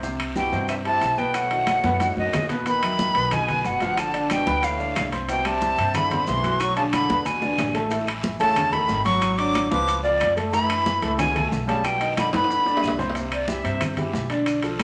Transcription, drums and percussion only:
0.03 high bongo, high conga, long guiro, maracas
0.19 high conga, high timbale, claves
0.36 high bongo, high conga, short guiro, maracas
0.53 high conga, short guiro, maracas
0.69 high bongo, high conga, high timbale, long guiro, claves, maracas
0.85 high conga, high timbale
1.01 high bongo, low bongo, high conga, high timbale, short guiro, maracas
1.18 high conga, short guiro, maracas
1.34 high bongo, high conga, high timbale, long guiro, claves, maracas
1.51 high conga, high timbale
1.67 high bongo, high conga, high timbale, short guiro, claves, maracas
1.84 high conga, short guiro, maracas
2.00 high bongo, high conga, high timbale, long guiro, maracas
2.17 high bongo, high conga
2.33 high bongo, low bongo, low conga, high timbale, low timbale, short guiro, claves, maracas
2.49 high bongo, low conga, high timbale, short guiro, maracas
2.66 high bongo, high conga, high timbale, long guiro, maracas
2.82 high conga, high timbale, claves, maracas
2.99 high bongo, high conga, short guiro, maracas
3.15 high conga, high timbale, short guiro, maracas
3.31 high bongo, high conga, low conga, high timbale, long guiro, claves, maracas
3.48 high conga, low conga, high timbale, maracas
3.64 high bongo, low bongo, high conga, short guiro, maracas
3.80 high conga, high timbale, short guiro, maracas
3.97 high bongo, high conga, high timbale, long guiro, claves, maracas
4.14 high bongo, high conga, high timbale, maracas
4.30 high bongo, high conga, high timbale, short guiro, claves, maracas
4.47 high conga, short guiro, maracas
4.63 high bongo, high conga, high timbale, long guiro, maracas
4.80 high bongo, high conga, maracas
4.96 high bongo, low bongo, high conga, high timbale, low timbale, short guiro, claves, maracas
5.12 high conga, high timbale, short guiro, maracas
5.29 high bongo, high conga, high timbale, long guiro, maracas
5.45 high timbale, claves, maracas
5.62 high bongo, high conga, short guiro, maracas
5.78 high conga, high timbale, short guiro, maracas
5.94 high bongo, high conga, low conga, high timbale, long guiro, claves, maracas
6.11 high conga, low conga, high timbale, maracas
6.27 high bongo, low bongo, high conga, low timbale, short guiro, maracas
6.44 high conga, high timbale, short guiro, maracas
6.60 high bongo, high timbale, long guiro, claves, maracas
6.76 high conga, high timbale, maracas
6.93 high bongo, high conga, high timbale, short guiro, claves, maracas
7.09 high conga, short guiro, maracas
7.26 low bongo, high conga, high timbale, long guiro, maracas
7.42 low bongo, high conga, maracas
7.58 low bongo, high conga, high timbale, low timbale, short guiro, claves, maracas
7.75 low bongo, high timbale, short guiro, maracas
7.91 high bongo, high conga, high timbale, long guiro, maracas
8.07 high conga, high timbale, claves, maracas
8.23 high bongo, high conga, short guiro, maracas
8.39 high conga, high timbale, short guiro, maracas
8.56 high bongo, high conga, low conga, high timbale, claves, maracas
8.73 high conga, low conga, high timbale, maracas
8.89 high bongo, low bongo, high conga, short guiro, maracas
9.05 high conga, high timbale, short guiro, maracas
9.22 high bongo, high conga, high timbale, long guiro, claves, maracas
9.38 high bongo, high conga, high timbale, maracas
9.54 high bongo, high conga, high timbale, short guiro, claves, maracas
9.71 high conga, short guiro, maracas
9.88 high bongo, high conga, high timbale, long guiro, maracas
10.04 high bongo, high conga, maracas
10.20 high bongo, low bongo, high conga, high timbale, short guiro, claves, maracas
10.37 high conga, high timbale, short guiro, maracas
10.53 high bongo, high conga, high timbale, long guiro, maracas
10.70 high conga, high timbale, claves, maracas
10.86 high bongo, high conga, short guiro, maracas
11.02 high conga, high timbale, short guiro, maracas
11.19 high bongo, high conga, low conga, high timbale, claves, maracas
11.36 high conga, low conga, high timbale, maracas
11.52 high bongo, low bongo, high conga, short guiro, maracas
11.68 high conga, high timbale, short guiro, maracas
11.84 high bongo, high conga, high timbale, long guiro, claves, maracas
12.01 high bongo, high conga, high timbale, maracas
12.17 high bongo, high conga, high timbale, short guiro, claves, maracas
12.33 high conga, high timbale, short guiro, maracas
12.44 high timbale
12.50 high bongo, high conga, long guiro, maracas
12.66 high bongo, high conga, maracas
12.77 low timbale
12.83 low bongo, high conga, short guiro, claves, maracas
12.88 low timbale
12.99 low bongo, high conga, short guiro, maracas
13.10 low timbale
13.15 high bongo, high conga, high timbale, long guiro, maracas
13.32 high conga, high timbale, claves, maracas
13.48 high bongo, high conga, short guiro, maracas
13.65 high conga, high timbale, short guiro, maracas
13.81 high bongo, high conga, low conga, high timbale, long guiro, claves, maracas
13.97 high conga, low conga, high timbale, maracas
14.13 high bongo, low bongo, high conga, short guiro, maracas
14.30 high timbale, short guiro, maracas
14.46 high bongo, high conga, high timbale, long guiro, claves, maracas
14.62 high conga, high timbale, maracas
14.79 high bongo, high conga, high timbale, short guiro, claves, maracas

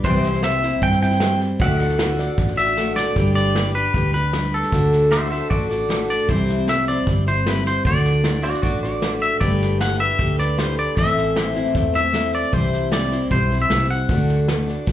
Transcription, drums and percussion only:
0.04 kick, snare
0.14 snare
0.23 snare
0.33 snare
0.43 snare, hi-hat pedal
0.62 snare
0.82 kick, snare
0.92 snare
1.01 snare
1.11 snare
1.20 snare, hi-hat pedal
1.40 snare
1.59 kick, snare
1.79 snare
1.89 snare
1.99 snare, hi-hat pedal
2.18 snare
2.38 kick, snare
2.48 snare
2.57 snare
2.67 snare
2.77 snare, hi-hat pedal
2.96 snare
3.16 kick, snare
3.36 snare
3.55 snare, hi-hat pedal
3.74 snare
3.94 kick, snare
4.13 snare
4.33 snare, hi-hat pedal
4.53 snare
4.63 snare
4.72 kick, snare
4.92 snare
5.11 snare, hi-hat pedal
5.31 snare
5.51 kick, snare
5.70 snare
5.90 snare, hi-hat pedal
6.09 snare
6.29 kick, snare
6.49 snare
6.68 snare, hi-hat pedal
6.88 snare
7.07 kick, snare
7.27 snare
7.46 snare, hi-hat pedal
7.66 snare
7.85 kick, snare
8.05 snare
8.24 snare, hi-hat pedal
8.44 snare
8.54 snare
8.63 kick, snare
8.83 snare
9.02 snare, hi-hat pedal
9.22 snare
9.41 kick, snare
9.61 snare
9.80 snare, hi-hat pedal
10.00 snare
10.10 snare
10.19 kick, snare
10.39 snare
10.58 snare, hi-hat pedal
10.78 snare
10.97 kick, snare
11.17 snare
11.36 snare, hi-hat pedal
11.55 snare
11.65 snare
11.75 kick, snare
11.94 snare
12.14 snare, hi-hat pedal
12.33 snare
12.53 kick, snare
12.72 snare
12.92 snare, hi-hat pedal
13.11 snare
13.31 kick, snare
13.51 snare
13.70 snare, hi-hat pedal
13.90 snare
14.09 kick, snare
14.29 snare
14.48 snare, hi-hat pedal
14.68 snare
14.87 kick, snare

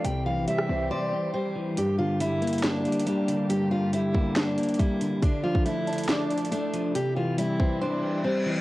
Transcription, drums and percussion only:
0.05 closed hi-hat
0.48 closed hi-hat
0.58 cross-stick
1.77 closed hi-hat
2.20 closed hi-hat
2.42 closed hi-hat
2.47 closed hi-hat
2.53 closed hi-hat
2.58 closed hi-hat
2.64 snare, closed hi-hat
2.85 closed hi-hat
2.92 closed hi-hat
3.00 closed hi-hat
3.07 closed hi-hat
3.28 closed hi-hat
3.50 closed hi-hat
3.93 closed hi-hat
4.15 kick
4.36 snare, closed hi-hat
4.58 closed hi-hat
4.63 closed hi-hat
4.69 closed hi-hat
4.74 closed hi-hat
4.79 kick, closed hi-hat
5.01 closed hi-hat
5.23 kick, closed hi-hat
5.55 kick
5.66 closed hi-hat
5.87 closed hi-hat
5.93 closed hi-hat
5.98 closed hi-hat
6.03 closed hi-hat
6.09 snare, closed hi-hat
6.30 closed hi-hat
6.38 closed hi-hat
6.45 closed hi-hat
6.52 closed hi-hat
6.74 closed hi-hat
6.95 closed hi-hat
7.38 closed hi-hat
7.60 kick

